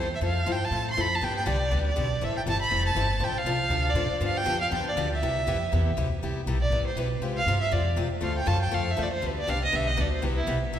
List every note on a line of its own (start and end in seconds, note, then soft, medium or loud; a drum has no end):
0.00 0.20 E2 medium
0.00 0.13 C5 loud
0.15 0.19 E5 medium
0.21 0.45 F2 medium
0.21 0.39 F3 medium
0.21 0.39 C4 medium
0.21 0.40 E4 medium
0.21 0.40 A4 medium
0.21 0.53 F5 medium
0.46 0.70 G2 medium
0.46 0.56 F3 medium
0.46 0.57 C4 medium
0.46 0.57 E4 medium
0.46 0.57 A4 medium
0.52 0.66 G5 medium
0.65 0.88 A5 loud
0.71 0.95 A2 medium
0.71 0.89 F3 medium
0.71 0.90 C4 medium
0.71 0.90 E4 medium
0.71 0.90 A4 medium
0.91 1.02 C6 medium
0.97 1.21 F2 medium
0.97 1.07 F3 medium
0.97 1.07 C4 medium
0.97 1.07 E4 medium
0.97 1.07 A4 medium
0.97 1.17 B5 medium
1.15 1.25 A5 medium
1.21 1.46 G2 medium
1.21 1.39 D3 medium
1.21 1.39 G3 medium
1.21 1.40 B3 medium
1.21 1.40 D4 medium
1.21 1.40 G4 medium
1.21 1.36 G5 medium
1.37 1.47 G5 medium
1.46 1.70 C2 medium
1.46 1.56 D3 medium
1.46 1.56 G3 medium
1.46 1.57 B3 medium
1.46 1.57 D4 medium
1.46 1.57 G4 medium
1.46 1.84 D5 medium
1.71 1.96 D2 medium
1.71 1.89 D3 medium
1.71 1.89 G3 medium
1.71 1.90 B3 medium
1.71 1.89 D4 medium
1.71 1.90 G4 medium
1.88 2.25 D5 medium
1.96 2.21 B1 medium
1.96 2.06 D3 medium
1.96 2.06 G3 medium
1.96 2.06 B3 medium
1.96 2.07 D4 medium
1.96 2.07 G4 medium
2.21 2.45 A1 medium
2.21 2.39 E3 medium
2.21 2.39 G3 medium
2.21 2.39 C4 medium
2.21 2.40 E4 medium
2.21 2.40 A4 medium
2.21 2.37 E5 medium
2.37 2.42 G5 medium
2.46 2.71 G1 medium
2.46 2.56 E3 medium
2.46 2.57 G3 medium
2.46 2.57 C4 medium
2.46 2.57 E4 medium
2.46 2.57 A4 medium
2.46 2.61 A5 medium
2.62 2.85 B5 loud
2.70 2.94 F1 medium
2.70 2.89 E3 medium
2.70 2.89 G3 medium
2.70 2.89 C4 medium
2.70 2.89 E4 medium
2.70 2.89 A4 medium
2.87 3.25 A5 medium
2.95 3.19 G1 medium
2.95 3.06 E3 medium
2.95 3.06 G3 medium
2.95 3.06 C4 medium
2.95 3.06 E4 medium
2.95 3.07 A4 medium
3.20 3.44 A1 medium
3.20 3.38 C3 medium
3.20 3.39 F3 medium
3.20 3.39 C4 medium
3.20 3.39 D4 medium
3.20 3.39 A4 medium
3.24 3.39 G5 medium
3.38 3.91 F5 loud
3.45 3.69 C2 medium
3.45 3.56 C3 medium
3.45 3.56 F3 medium
3.45 3.56 C4 medium
3.45 3.57 D4 loud
3.45 3.57 A4 loud
3.70 3.93 D2 medium
3.70 3.89 C3 medium
3.70 3.89 F3 medium
3.70 3.89 C4 medium
3.70 3.89 D4 medium
3.70 3.89 A4 medium
3.90 4.08 A2 medium
3.90 4.13 D5 medium
3.95 4.06 C3 medium
3.95 4.06 F3 medium
3.95 4.06 C4 medium
3.95 4.06 D4 medium
3.95 4.06 A4 medium
4.10 muted upright bass stroke soft
4.20 4.45 G2 medium
4.20 4.39 D3 medium
4.20 4.39 F3 medium
4.20 4.39 B3 medium
4.20 4.39 D4 medium
4.20 4.39 G4 medium
4.26 4.39 F5 medium
4.37 4.60 G5 loud
4.45 4.71 F2 medium
4.45 4.56 D3 medium
4.45 4.56 F3 medium
4.45 4.56 B3 medium
4.45 4.56 D4 medium
4.45 4.56 G4 medium
4.61 4.71 F5 medium
4.71 4.95 E2 medium
4.71 4.89 D3 medium
4.71 4.89 F3 medium
4.71 4.89 B3 medium
4.71 4.90 D4 medium
4.71 4.90 G4 medium
4.71 4.86 G5 medium
4.89 5.10 D5 medium
4.96 5.21 D2 medium
4.96 5.07 D3 medium
4.96 5.07 F3 medium
4.96 5.07 B3 medium
4.96 5.07 D4 loud
4.96 5.07 G4 medium
5.14 5.94 E5 medium
5.22 5.46 C2 medium
5.22 5.40 C3 medium
5.22 5.40 G3 medium
5.22 5.40 B3 medium
5.22 5.40 E4 medium
5.22 5.40 G4 medium
5.47 5.71 F2 medium
5.47 5.57 C3 medium
5.47 5.57 G3 medium
5.47 5.57 B3 medium
5.47 5.57 E4 loud
5.47 5.57 G4 medium
5.72 5.96 E2 medium
5.72 5.90 C3 medium
5.72 5.90 G3 medium
5.72 5.90 B3 medium
5.72 5.90 E4 medium
5.72 5.90 G4 medium
5.97 6.21 D2 medium
5.97 6.07 C3 medium
5.97 6.07 G3 medium
5.97 6.07 B3 medium
5.97 6.07 E4 medium
5.97 6.07 G4 medium
6.22 6.46 C2 medium
6.22 6.40 C3 medium
6.22 6.40 G3 medium
6.22 6.40 B3 medium
6.22 6.40 E4 medium
6.22 6.40 G4 medium
6.46 6.70 B1 medium
6.46 6.57 C3 medium
6.46 6.57 G3 medium
6.46 6.57 B3 medium
6.46 6.57 E4 medium
6.46 6.57 G4 medium
6.61 6.84 D5 medium
6.70 6.84 A1 medium
6.70 6.89 C3 medium
6.70 6.90 G3 medium
6.70 6.90 B3 medium
6.70 6.90 E4 medium
6.70 6.90 G4 medium
6.85 7.00 C5 medium
6.85 muted upright bass stroke soft
6.95 7.19 B1 medium
6.95 7.07 C3 medium
6.95 7.07 G3 medium
6.95 7.07 B3 medium
6.95 7.07 E4 medium
6.95 7.07 G4 medium
6.95 7.23 B4 medium
7.19 7.45 C2 medium
7.19 7.40 C3 medium
7.19 7.40 G#3 medium
7.19 7.40 C4 medium
7.19 7.40 F4 medium
7.19 7.40 G4 medium
7.38 7.60 F5 loud
7.46 7.71 G2 medium
7.46 7.57 C3 medium
7.46 7.57 G#3 medium
7.46 7.57 C4 medium
7.46 7.58 F4 medium
7.46 7.58 G4 medium
7.61 7.74 E5 medium
7.71 7.96 F2 medium
7.71 7.90 C3 medium
7.71 7.90 G#3 medium
7.71 7.90 C4 medium
7.71 7.90 F4 medium
7.71 7.90 G4 medium
7.71 7.97 D5 medium
7.96 8.09 C2 medium
7.96 8.07 C3 medium
7.96 8.07 G#3 medium
7.96 8.07 C4 medium
7.96 8.07 F4 medium
7.96 8.07 G4 medium
8.11 muted upright bass stroke soft
8.21 8.46 D2 medium
8.21 8.39 D3 medium
8.21 8.39 A3 medium
8.21 8.40 C4 medium
8.21 8.40 F4 medium
8.21 8.40 A4 medium
8.21 8.35 F5 medium
8.38 8.49 G5 medium
8.46 8.71 F#2 medium
8.46 8.56 D3 medium
8.46 8.57 A3 medium
8.46 8.57 C4 medium
8.46 8.57 F4 medium
8.46 8.57 A4 medium
8.46 8.61 A5 loud
8.62 8.76 G5 medium
8.71 8.97 F2 medium
8.71 8.90 D3 medium
8.71 8.90 A3 medium
8.71 8.90 C4 medium
8.71 8.90 F4 medium
8.71 8.90 A4 medium
8.71 8.92 F5 medium
8.90 9.04 E5 medium
8.97 9.22 E2 medium
8.97 9.07 D3 medium
8.97 9.07 A3 medium
8.97 9.07 C4 medium
8.97 9.07 F4 medium
8.97 9.08 A4 medium
9.03 9.13 D5 medium
9.13 9.28 C5 medium
9.21 9.47 D2 medium
9.21 9.40 D3 medium
9.21 9.40 G3 medium
9.21 9.40 B3 medium
9.21 9.40 D4 medium
9.21 9.40 G4 medium
9.26 9.38 B4 medium
9.39 9.51 D5 medium
9.47 9.72 C2 medium
9.47 9.57 D3 medium
9.47 9.58 G3 medium
9.47 9.58 B3 medium
9.47 9.58 D4 medium
9.47 9.58 G4 medium
9.47 9.62 F5 loud
9.65 9.77 D#5 medium
9.72 9.97 B1 medium
9.72 9.90 D3 medium
9.72 9.90 G3 medium
9.72 9.90 B3 medium
9.72 9.90 D4 medium
9.72 9.90 G4 medium
9.72 9.89 E5 medium
9.87 10.03 D#5 medium
9.97 10.22 D2 medium
9.97 10.07 D3 medium
9.97 10.07 G3 medium
9.97 10.07 B3 medium
9.97 10.08 D4 medium
9.97 10.07 G4 medium
10.01 10.12 D5 medium
10.13 10.26 C5 medium
10.22 10.47 C2 medium
10.22 10.40 C3 medium
10.22 10.40 G3 medium
10.22 10.40 B3 medium
10.22 10.40 E4 medium
10.22 10.40 G4 medium
10.22 10.36 B4 medium
10.37 10.43 E4 medium
10.47 10.60 B1 medium
10.47 10.57 C3 medium
10.47 10.57 G3 medium
10.47 10.57 B3 medium
10.47 10.57 E4 medium
10.47 10.58 G4 medium
10.62 muted upright bass stroke soft
10.72 10.79 C2 medium
10.72 10.79 C3 medium
10.72 10.79 G3 medium
10.72 10.79 B3 medium
10.72 10.79 E4 medium
10.72 10.79 G4 medium
10.72 10.79 E5 medium